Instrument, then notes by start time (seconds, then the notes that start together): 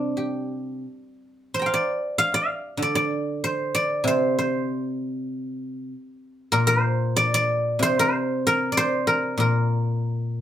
guzheng
Already playing: C3 G3 C4 D4 A#4 C5
0.17 G4
1.54 C5 C6
1.59 G5 A#5
1.66 F5
1.74 D5
2.18 F5
2.34 F5
2.77 D3
2.82 D5
2.95 D5
3.44 C5
3.75 D5
4.04 C3 C5
4.39 C5
6.52 A#2 A#4
6.67 C5
7.16 D5
7.34 D5
7.79 C3 C5
7.99 C5
8.47 A#4
8.72 D5
8.77 C5
9.07 A#4
9.38 A#2 A#4